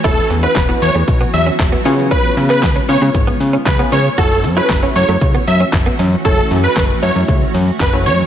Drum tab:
HH |x-o-x-o-x-o-x-o-|x-o-x-o-x-o-x-o-|x-o-x-o-x-o-x-o-|x-o-x-o-x-o-x-o-|
SH |xxxxxxxxxxxxxxxx|xxxxxxxxxxxxxxxx|xxxxxxxxxxxxxxxx|xxxxxxxxxxxxxxxx|
CP |----x-------x---|---xx-------x---|----x-------x---|----x-------x---|
SD |----o-------o---|----o-------o---|----o-------o---|----o-------o---|
BD |o---o---o---o---|o---o---o---o---|o---o---o---o---|o---o---o---o---|